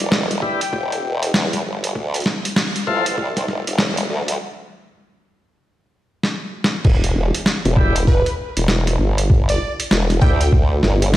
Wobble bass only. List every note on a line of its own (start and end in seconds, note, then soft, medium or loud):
0.00 0.41 E1 loud
0.73 1.32 E1 medium
1.34 1.63 E2 loud
1.65 1.94 G1 loud
1.95 2.24 D2 medium
2.87 3.16 A1 loud
3.18 3.47 C2 medium
3.48 3.64 F1 medium
3.67 4.08 F1 loud
4.09 4.38 D2 loud
6.85 7.14 E1 medium
7.15 7.32 E1 loud
7.65 8.24 E1 loud
8.57 8.98 E1 loud
8.99 9.59 G1 loud
9.91 10.20 E1 medium
10.22 10.81 D2 loud
10.83 11.17 G1 loud